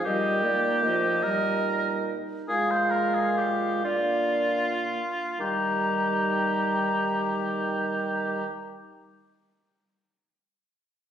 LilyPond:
<<
  \new Staff \with { instrumentName = "Flute" } { \time 12/8 \key ees \major \tempo 4. = 42 ees''8 d''8 ees''4. r8 f''4. d''8. r8. | bes''1. | }
  \new Staff \with { instrumentName = "Oboe" } { \time 12/8 \key ees \major g'4. bes'4 r8 aes'16 c''16 bes'16 aes'16 g'8 f'4. | g'1. | }
  \new Staff \with { instrumentName = "Clarinet" } { \time 12/8 \key ees \major ees'4. ees'4. f'4. d'4 r8 | ees'1. | }
  \new Staff \with { instrumentName = "French horn" } { \clef bass \time 12/8 \key ees \major g8 bes8 f8 g4 r8 aes4. bes4 r8 | g1. | }
  \new Staff \with { instrumentName = "Bassoon" } { \clef bass \time 12/8 \key ees \major bes,2~ bes,8 r8 bes,2~ bes,8 r8 | ees1. | }
>>